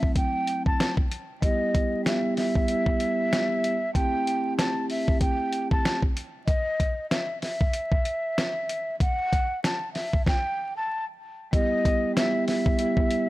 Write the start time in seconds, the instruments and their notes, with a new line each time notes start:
Already playing: vibraphone F#3 A3 C4 E4, flute E5
0.03 kick
0.16 flute G5, kick, closed hi-hat
0.47 closed hi-hat
0.66 flute A5, kick
0.80 snare, closed hi-hat
0.97 kick
1.11 closed hi-hat
1.40 vibraphone G3 B3 E4 G4, flute D#5, kick, closed hi-hat
1.75 kick, closed hi-hat
2.03 vibraphone G3 B3 E4 G4, flute E5, snare, closed hi-hat
2.37 flute E5, snare, open hi-hat
2.55 kick
2.67 vibraphone G3 B3 E4 G4, closed hi-hat
2.86 kick
3.00 closed hi-hat
3.33 snare, closed hi-hat
3.64 closed hi-hat
3.93 vibraphone A3 C4 E4 G4, flute G5, kick, closed hi-hat
4.27 closed hi-hat
4.58 flute A5, snare, closed hi-hat
4.90 flute E5, open hi-hat
5.08 kick
5.21 flute G5, kick, closed hi-hat
5.53 closed hi-hat
5.71 flute A5, kick
5.85 snare, closed hi-hat
6.02 kick
6.17 closed hi-hat
6.47 flute D#5, kick, closed hi-hat
6.80 kick, closed hi-hat
7.11 flute E5, snare, closed hi-hat
7.42 flute E5, snare, open hi-hat
7.61 kick
7.73 closed hi-hat
7.92 kick
8.05 closed hi-hat
8.38 snare, closed hi-hat
8.69 closed hi-hat
9.00 flute F#5, kick, closed hi-hat
9.33 kick, closed hi-hat
9.64 flute A5, snare, closed hi-hat
9.93 flute E5, snare, open hi-hat
10.13 kick
10.27 flute G5, kick, snare
10.77 flute A5
11.51 vibraphone G3 B3 E4 G4, flute D#5, kick, closed hi-hat
11.85 kick, closed hi-hat
12.14 vibraphone G3 B3 E4 G4, flute E5, snare, closed hi-hat
12.47 flute E5, snare, open hi-hat
12.66 kick
12.78 vibraphone G3 B3 E4 G4, closed hi-hat
12.97 kick
13.11 closed hi-hat